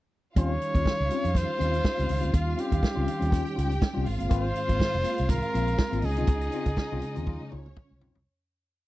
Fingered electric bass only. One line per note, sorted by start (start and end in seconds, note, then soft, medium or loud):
0.37 0.56 D#2 medium
0.75 0.84 D#2 loud
1.00 1.08 C#2 medium
1.25 1.44 F2 medium
1.60 1.80 D#2 medium
1.99 2.07 C#2 medium
2.10 2.21 C#2 medium
2.24 2.32 D2 medium
2.34 2.53 D#2 medium
2.72 2.81 D#2 loud
2.97 3.05 C#2 medium
3.22 3.41 D#2 medium
3.58 3.77 C#2 loud
3.97 4.05 C2 medium
4.07 4.18 G#1 medium
4.21 4.29 G1 medium
4.31 4.51 G#1 medium
4.69 4.78 G#1 medium
4.95 5.03 F1 medium
5.20 5.39 C2 medium
5.55 5.74 A#1 loud
5.92 6.01 G#1 medium
6.03 6.17 C#2 loud
6.17 6.26 C2 loud
6.28 6.48 C#2 loud
6.66 6.75 C#2 loud
6.92 7.01 C2 medium
7.17 7.36 D#2 medium
7.53 7.72 C#2 medium
7.91 8.02 C2 medium
8.02 8.13 B1 loud
8.16 8.24 C2 loud